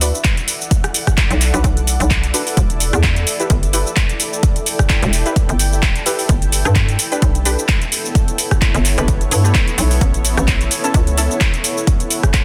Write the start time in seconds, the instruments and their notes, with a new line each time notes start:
Already playing: fm bass D2, ambient pad E4 A4 D5 E5 F#5
0.01 synth stab D4 F#4 B4, open hi-hat, shaker
0.15 shaker
0.24 kick, clap, closed hi-hat, shaker
0.37 closed hi-hat, shaker
0.48 open hi-hat, shaker
0.61 shaker
0.71 kick, closed hi-hat, shaker
0.84 cross-stick, closed hi-hat, shaker
0.94 open hi-hat, shaker
1.07 kick, cross-stick, closed hi-hat, shaker
1.18 kick, clap, closed hi-hat, shaker
1.31 fm bass B1, closed hi-hat, shaker
1.41 clap, open hi-hat, shaker
1.54 fm bass B1, synth stab D4 F#4 B4, closed hi-hat, shaker
1.64 fm bass B1, kick, closed hi-hat, shaker
1.77 closed hi-hat, shaker
1.87 open hi-hat, shaker
2.00 fm bass B1, closed hi-hat, shaker
2.11 kick, clap, closed hi-hat, shaker
2.23 closed hi-hat, shaker
2.34 synth stab D4 F#4 B4, open hi-hat, shaker
2.47 open hi-hat, shaker
2.57 fm bass E1, kick, closed hi-hat, shaker
2.70 closed hi-hat, shaker
2.80 open hi-hat, shaker
2.93 fm bass E2, cross-stick, closed hi-hat, shaker
3.03 kick, clap, closed hi-hat, shaker
3.16 closed hi-hat, shaker
3.27 open hi-hat, shaker
3.40 synth stab E4 G4 B4, ambient pad G5, closed hi-hat, shaker
3.50 fm bass G1, kick, closed hi-hat, shaker
3.63 closed hi-hat, shaker
3.73 synth stab E4 G4 B4, open hi-hat, shaker
3.87 shaker
3.97 kick, clap, closed hi-hat, shaker
4.09 closed hi-hat, shaker
4.20 open hi-hat, shaker
4.33 shaker
4.43 kick, closed hi-hat, shaker
4.56 closed hi-hat, shaker
4.66 open hi-hat, shaker
4.79 kick, cross-stick, closed hi-hat, shaker
4.90 kick, clap, closed hi-hat, shaker
5.03 fm bass E1, closed hi-hat, shaker
5.13 clap, open hi-hat, shaker
5.26 synth stab E4 G4 B4, closed hi-hat, shaker
5.36 kick, closed hi-hat, shaker
5.49 fm bass G1, closed hi-hat, shaker
5.59 open hi-hat, shaker
5.73 shaker
5.83 kick, clap, closed hi-hat, shaker
5.96 closed hi-hat, shaker
6.06 synth stab E4 G4 B4, open hi-hat, shaker
6.19 open hi-hat, shaker
6.29 fm bass G1, ambient pad B3, kick, closed hi-hat, shaker
6.42 closed hi-hat, shaker
6.52 open hi-hat, shaker
6.65 fm bass G2, cross-stick, closed hi-hat, shaker
6.76 kick, clap, closed hi-hat, shaker
6.89 closed hi-hat, shaker
6.99 open hi-hat, shaker
7.05 ambient pad C#5
7.12 synth stab D4 G4 B4, closed hi-hat, shaker
7.22 fm bass B1, kick, closed hi-hat, shaker
7.35 closed hi-hat, shaker
7.45 synth stab D4 G4 B4, open hi-hat, shaker
7.59 shaker
7.69 kick, clap, closed hi-hat, shaker
7.82 closed hi-hat, shaker
7.92 open hi-hat, shaker
8.05 shaker
8.15 kick, closed hi-hat, shaker
8.28 closed hi-hat, shaker
8.38 open hi-hat, shaker
8.51 kick, cross-stick, closed hi-hat, shaker
8.62 kick, clap, closed hi-hat, shaker
8.75 fm bass G1, closed hi-hat, shaker
8.85 clap, open hi-hat, shaker
8.98 fm bass G1, synth stab D4 G4 B4, closed hi-hat, shaker
9.08 kick, closed hi-hat, shaker
9.21 closed hi-hat, shaker
9.31 fm bass G2, open hi-hat, shaker
9.44 synth stab D4 G4 B4, shaker
9.55 kick, clap, closed hi-hat, shaker
9.68 closed hi-hat, shaker
9.78 fm bass B1, open hi-hat, shaker
9.91 open hi-hat, shaker
10.01 fm bass A1, kick, closed hi-hat, shaker
10.14 closed hi-hat, shaker
10.25 open hi-hat, shaker
10.37 fm bass A1, cross-stick, closed hi-hat, shaker
10.48 kick, clap, closed hi-hat, shaker
10.61 closed hi-hat, shaker
10.71 open hi-hat, shaker
10.84 synth stab C#4 E4 A4, closed hi-hat, shaker
10.94 fm bass C#2, kick, closed hi-hat, shaker
11.07 closed hi-hat, shaker
11.17 synth stab C#4 E4 A4, open hi-hat, shaker
11.31 shaker
11.41 kick, clap, closed hi-hat, shaker
11.54 closed hi-hat, shaker
11.64 open hi-hat, shaker
11.77 shaker
11.87 kick, closed hi-hat, shaker
12.00 closed hi-hat, shaker
12.10 open hi-hat, shaker
12.23 kick, cross-stick, closed hi-hat, shaker
12.34 kick, clap, closed hi-hat, shaker